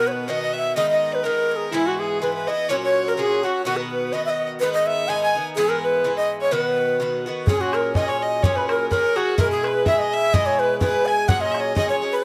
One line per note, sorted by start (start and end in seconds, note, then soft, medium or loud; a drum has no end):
0.00 0.27 B2 medium
0.00 0.27 D#3 medium
0.00 0.29 B3 medium
0.00 0.29 F#4 medium
0.06 0.30 B4 medium
0.06 0.13 C#5 medium
0.12 0.31 B4 medium
0.28 0.76 B2 medium
0.28 0.76 D#3 medium
0.28 0.76 B3 medium
0.28 0.77 F#4 medium
0.28 0.55 D#5 medium
0.28 0.42 D#5 medium
0.42 0.54 D#5 medium
0.53 0.75 E5 medium
0.53 0.76 E5 medium
0.76 1.23 G#2 medium
0.76 1.24 D#3 medium
0.76 1.24 B3 medium
0.76 1.25 D#4 medium
0.76 0.88 D#5 medium
0.76 0.89 D#5 loud
0.88 1.14 D#5 medium
0.88 1.16 D#5 medium
1.12 1.25 B4 medium
1.12 1.27 B4 medium
1.23 1.71 G#2 soft
1.23 1.73 D#3 medium
1.23 1.73 B3 medium
1.23 1.74 D#4 medium
1.23 1.73 A#4 medium
1.23 1.51 A#4 medium
1.51 1.57 A#4 medium
1.56 1.72 G#4 medium
1.72 2.20 G#2 medium
1.72 2.21 E3 medium
1.72 2.22 B3 medium
1.72 1.85 E4 medium
1.72 1.88 E4 medium
1.72 2.22 E4 medium
1.86 1.98 F#4 medium
1.86 2.01 F#4 medium
1.99 2.23 G#4 medium
1.99 2.21 G#4 medium
2.22 2.48 G#2 medium
2.22 2.48 E3 soft
2.22 2.48 B3 medium
2.22 2.46 E4 medium
2.22 2.34 B4 medium
2.22 2.33 B4 medium
2.34 2.49 B4 medium
2.34 2.50 B4 medium
2.47 2.69 E3 soft
2.47 2.70 B3 soft
2.47 2.69 E4 soft
2.47 2.71 D#5 medium
2.47 2.69 D#5 medium
2.69 3.16 A#2 medium
2.69 3.17 F#3 medium
2.69 3.18 C#4 medium
2.69 3.18 F#4 medium
2.69 2.82 C#5 medium
2.69 2.75 C#5 medium
2.83 3.05 C#5 medium
2.83 3.10 C#5 medium
3.07 3.17 A#4 medium
3.07 3.21 A#4 medium
3.17 3.43 A#2 medium
3.17 3.43 F#3 soft
3.17 3.43 C#4 medium
3.17 3.42 F#4 medium
3.17 3.45 G#4 medium
3.17 3.46 G#4 medium
3.43 3.66 F#3 soft
3.43 3.66 C#4 soft
3.43 3.65 F#4 soft
3.43 3.65 F#4 medium
3.43 3.66 F#4 medium
3.65 4.11 B2 medium
3.65 4.12 D#3 medium
3.65 4.14 B3 medium
3.65 3.78 F#4 medium
3.65 3.81 F#4 medium
3.65 4.14 F#4 medium
3.76 3.91 A#4 medium
3.76 3.79 B4 medium
3.91 4.14 B4 medium
3.91 4.15 B4 medium
4.13 4.61 B2 soft
4.13 4.61 D#3 medium
4.13 4.62 B3 medium
4.13 4.62 F#4 medium
4.13 4.25 D#5 medium
4.13 4.26 D#5 medium
4.25 4.49 D#5 medium
4.25 4.31 E5 medium
4.30 4.48 D#5 medium
4.60 5.07 G#2 medium
4.60 5.07 D#3 medium
4.60 5.09 B3 medium
4.60 5.09 D#4 medium
4.60 4.72 B4 loud
4.60 4.76 B4 medium
4.73 4.88 D#5 loud
4.73 4.87 D#5 medium
4.86 5.10 E5 medium
4.86 5.11 E5 medium
5.08 5.34 G#2 medium
5.08 5.35 D#3 soft
5.08 5.35 B3 medium
5.08 5.34 D#4 medium
5.08 5.21 G#5 medium
5.08 5.22 G#5 medium
5.21 5.44 G#5 medium
5.21 5.45 G#5 medium
5.35 5.57 D#3 soft
5.35 5.57 B3 soft
5.35 5.57 D#4 medium
5.56 6.03 G#2 medium
5.56 6.04 E3 medium
5.56 6.04 B3 medium
5.56 6.05 E4 medium
5.56 5.71 G#4 loud
5.56 5.72 G#4 medium
5.69 5.82 A#4 medium
5.69 5.86 A#4 medium
5.83 6.15 B4 medium
5.83 6.19 B4 medium
6.04 6.51 G#2 medium
6.04 6.51 E3 medium
6.04 6.51 B3 soft
6.04 6.53 E4 soft
6.17 6.29 D#5 medium
6.17 6.30 D#5 medium
6.41 6.54 C#5 medium
6.41 6.53 C#5 medium
6.51 6.99 B2 medium
6.51 7.00 D#3 medium
6.51 7.00 B3 medium
6.51 7.02 F#4 medium
6.51 7.26 B4 medium
7.00 7.26 B2 medium
7.00 7.26 D#3 soft
7.00 7.26 B3 medium
7.00 7.25 F#4 medium
7.26 7.49 D#3 soft
7.26 7.48 B3 soft
7.26 7.48 F#4 soft
7.47 7.95 A#2 medium
7.47 7.96 F#3 medium
7.47 7.96 C#4 medium
7.47 7.75 G#4 medium
7.47 7.62 G#4 loud
7.47 7.60 G#4 medium
7.47 7.98 G#4 medium
7.47 bodhran medium
7.61 7.75 F#4 medium
7.73 7.95 A#4 medium
7.73 7.94 A#4 medium
7.73 7.96 A#4 medium
7.73 bodhran medium
7.95 8.43 A#2 medium
7.95 8.44 F#3 medium
7.95 8.44 C#4 medium
7.95 8.45 G#4 medium
7.95 8.07 D#5 medium
7.95 8.10 D#5 medium
7.95 8.08 D#5 medium
7.95 bodhran loud
8.08 8.20 C#5 medium
8.08 8.24 C#5 medium
8.22 8.45 D#5 medium
8.22 8.42 D#5 medium
8.22 8.44 D#5 medium
8.43 8.89 A#2 medium
8.43 8.91 F#3 medium
8.43 8.92 C#4 medium
8.43 8.93 G#4 medium
8.43 8.58 C#5 medium
8.43 8.56 C#5 medium
8.43 bodhran medium
8.56 8.69 B4 medium
8.56 8.70 B4 medium
8.56 8.69 B4 medium
8.68 8.90 A#4 medium
8.68 8.89 A#4 medium
8.68 8.90 A#4 medium
8.68 bodhran medium
8.90 9.17 A#2 medium
8.90 9.17 F#3 medium
8.90 9.16 C#4 medium
8.90 9.15 G#4 medium
8.90 9.18 A#4 medium
8.90 9.15 A#4 medium
8.90 9.18 A#4 medium
8.90 bodhran medium
9.16 9.38 F#3 soft
9.16 9.38 C#4 soft
9.16 9.38 F#4 medium
9.16 9.41 F#4 medium
9.16 9.37 F#4 medium
9.16 9.38 G#4 soft
9.38 9.85 B2 medium
9.38 9.86 G#3 medium
9.38 9.86 E4 medium
9.38 9.88 G#4 medium
9.38 9.50 A#4 medium
9.38 9.51 A#4 medium
9.38 bodhran medium
9.51 9.65 G#4 medium
9.51 9.67 G#4 medium
9.51 9.65 G#4 medium
9.64 9.86 B4 medium
9.64 9.87 B4 medium
9.64 9.86 B4 medium
9.64 bodhran medium
9.86 10.32 B2 medium
9.86 10.34 G#3 medium
9.86 10.33 E4 soft
9.86 10.35 G#4 medium
9.86 9.98 E5 medium
9.86 10.00 E5 medium
9.86 9.99 E5 medium
9.86 bodhran medium
9.98 10.12 D#5 medium
9.98 10.15 D#5 medium
9.98 10.12 D#5 medium
10.12 10.34 E5 loud
10.12 10.35 E5 medium
10.33 10.79 B2 medium
10.33 10.81 G#3 medium
10.33 10.81 E4 medium
10.33 10.82 G#4 medium
10.33 10.48 D#5 loud
10.33 10.60 D#5 medium
10.33 10.47 D#5 medium
10.33 bodhran medium
10.46 10.61 C#5 loud
10.46 10.81 C#5 medium
10.59 10.80 B4 medium
10.80 11.28 B2 medium
10.80 11.28 G#3 medium
10.80 11.29 E4 medium
10.80 11.30 G#4 medium
10.80 11.07 B4 medium
10.80 11.05 B4 medium
10.80 11.09 B4 medium
10.80 bodhran medium
11.06 11.30 G#5 loud
11.06 11.29 G#5 medium
11.06 11.27 G#5 medium
11.28 11.74 A#2 medium
11.28 11.75 F#3 medium
11.28 11.76 C#4 medium
11.28 11.77 G#4 medium
11.28 11.41 F#5 medium
11.28 11.42 F#5 loud
11.28 11.41 F#5 medium
11.28 bodhran medium
11.41 11.55 D#5 loud
11.41 11.53 D#5 medium
11.52 11.76 C#5 medium
11.52 11.60 D#5 medium
11.52 11.62 E5 medium
11.52 bodhran medium
11.59 11.75 C#5 medium
11.59 11.76 D#5 medium
11.75 12.02 A#2 medium
11.75 12.03 F#3 medium
11.75 12.02 C#4 medium
11.75 12.01 G#4 medium
11.75 11.88 D#5 loud
11.75 11.89 D#5 medium
11.75 bodhran medium
11.89 12.12 C#5 medium
11.89 11.95 C#5 medium
11.89 12.16 C#5 medium
12.02 12.22 F#3 soft
12.02 12.23 C#4 soft
12.02 12.24 G#4 soft
12.12 12.24 B4 medium